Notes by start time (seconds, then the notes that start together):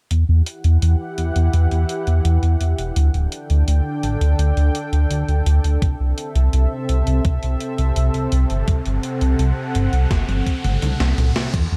0.11 E2 E3 E4 G4 F#5, closed hi-hat
0.29 E2
0.46 closed hi-hat
0.64 E2, closed hi-hat
0.82 E2, closed hi-hat
1.18 E2, closed hi-hat
1.36 E2, closed hi-hat
1.53 E2, closed hi-hat
1.71 E2, closed hi-hat
1.89 closed hi-hat
2.07 E2, closed hi-hat
2.25 E2, closed hi-hat
2.43 E2, closed hi-hat
2.61 E2, closed hi-hat
2.79 E1, closed hi-hat
2.96 D2 D3 D4 A4 G5, closed hi-hat
3.14 D1, closed hi-hat
3.32 closed hi-hat
3.50 D2, closed hi-hat
3.68 D2, closed hi-hat
4.03 A1, closed hi-hat
4.21 D2, closed hi-hat
4.39 D2, closed hi-hat
4.57 D2, closed hi-hat
4.75 closed hi-hat
4.93 D2, closed hi-hat
5.11 D2, closed hi-hat
5.28 D2, closed hi-hat
5.46 D2, closed hi-hat
5.64 D2, closed hi-hat
5.82 C2 C3 C4 E5, kick, closed hi-hat, riser
6.00 C2
6.18 closed hi-hat
6.35 C2, closed hi-hat
6.53 C2, closed hi-hat
6.89 C2, closed hi-hat
7.07 C2, closed hi-hat
7.25 C2, kick, closed hi-hat
7.43 C2, closed hi-hat
7.61 closed hi-hat
7.78 C2, closed hi-hat
7.96 C2, closed hi-hat
8.14 C2, closed hi-hat
8.32 C2, closed hi-hat
8.50 G1, closed hi-hat
8.68 C2 F#5, kick, closed hi-hat
8.86 G1, closed hi-hat
9.03 closed hi-hat
9.21 C2, closed hi-hat
9.39 C2, closed hi-hat
9.75 G1, closed hi-hat
9.93 C2, closed hi-hat
10.11 G1, kick, snare, closed hi-hat
10.29 G1, closed hi-hat, high tom
10.46 kick, closed hi-hat
10.64 G1, closed hi-hat, mid tom
10.82 C2, closed hi-hat, mid tom
11.00 C2, snare, closed hi-hat
11.18 C2, closed hi-hat, mid tom
11.36 C2, snare, closed hi-hat
11.54 E2 E3 B3 G4 F#5, kick, closed hi-hat, crash
11.72 E2